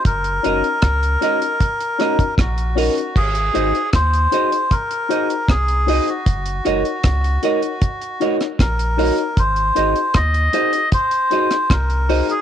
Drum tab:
CC |----------------|x---------------|----------------|----------------|
HH |xxxxxxxxxxxxxxox|-xxxxxxxxxxxxxox|xxxxxxxxxxxxxxox|xxxxxxxxxxxxxxox|
SD |----r-----r-r---|----r-------r---|----r------rr---|----r------rr---|
BD |o---o---o--oo---|o---o---o---o---|o---o---o---o---|o---o---o---o---|